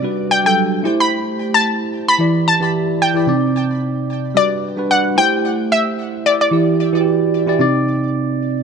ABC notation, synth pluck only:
X:1
M:4/4
L:1/16
Q:"Swing 16ths" 1/4=111
K:G
V:1 name="Synth pluck"
d2 g g4 b4 a4 b- | b2 a4 g6 z4 | d4 f2 g4 e4 d d- | d6- d z8 z |]